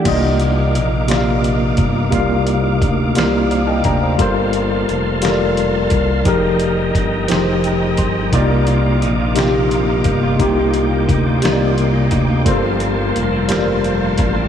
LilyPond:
<<
  \new Staff \with { instrumentName = "Tonewheel organ" } { \time 6/8 \key c \mixolydian \tempo 4. = 58 << { <ees' d'''>2.~ | <ees' d'''>2. | c'''2. | <ees'' bes''>2. |
<ees' d'''>2.~ | <ees' d'''>2. | <f' c'''>2. | } \\ { f''2.~ | f''2. | a''2. | g''2. |
f''2. | g''2. | a''2. | } >> }
  \new Staff \with { instrumentName = "Tonewheel organ" } { \time 6/8 \key c \mixolydian bes2.~ | bes2.~ | bes2. | aes2. |
bes2.~ | bes2.~ | bes2. | }
  \new Staff \with { instrumentName = "Tine electric piano" } { \time 6/8 \key c \mixolydian << { r2. | r2 <c'' f''>16 <ees'' g'' a''>16 <d'' g'' bes''>16 <c'' f''>16~ | <c'' f''>16 r2 r8. | r2 g''8 c'''8 |
r2. | r2. | r2. | } \\ { <c bes f' d'' ees''>4. <c bes f' d'' e'' f''>4. | <c bes f' d'' f''>4. <c bes f' d'' f''>4. | <g f' a' bes' c''>4. <g f' a' bes' cis'' d''>4. | <f ees' g' aes' bes'>4. <f ees' g' aes' c''>4. |
<c bes ees' f' d''>4. <c bes ees' f' g'>4. | <c bes ees' f' g'>4. <c bes ees' f' cis'' d''>4. | <g f' a' bes' c''>4. <g f' a' bes' c'' d''>4. | } >> }
  \new Staff \with { instrumentName = "Clean electric guitar" } { \time 6/8 \key c \mixolydian r2. | r2. | r2. | r2. |
<c f'>16 bes16 f'16 bes16 ees'16 f'16 <c f'>16 bes16 f'16 bes16 ees'16 f'16 | <c f'>16 bes16 f'16 bes16 ees'16 f'16 <c f'>16 bes16 f'16 bes16 ees'16 f'16 | <g, c'>16 f16 c'16 f16 bes16 c'16 <g, c'>16 f16 c'16 f16 bes16 c'16 | }
  \new Staff \with { instrumentName = "Analog synth bass" } { \clef bass \time 6/8 \key c \mixolydian c,4 bes,,4. g,,8 | c,4 d,8 c,4 d,8 | g,,4 f,,4. c,8 | f,,4 g,,8 f,,4 g,,8 |
c,4 bes,,4. g,,8 | c,4 d,8 c,4 d,8 | g,,4 f,,4. a,,8 | }
  \new DrumStaff \with { instrumentName = "Drums" } \drummode { \time 6/8 <cymc hh bd>8 hh8 hh8 <hh sn>8 hh8 <hh bd>8 | <hh bd>8 hh8 <hh bd>8 <hh sn>8 hh8 <hh bd>8 | <hh bd>8 hh8 hh8 <hh sn>8 hh8 <hh bd>8 | <hh bd>8 hh8 <hh bd>8 <hh sn>8 hh8 <hh bd>8 |
<hh bd>8 hh8 hh8 <hh sn>8 hh8 <hh bd>8 | <hh bd>8 hh8 <hh bd>8 <hh sn>8 hh8 <hh bd>8 | <hh bd>8 hh8 hh8 <hh sn>8 hh8 <hh bd>8 | }
>>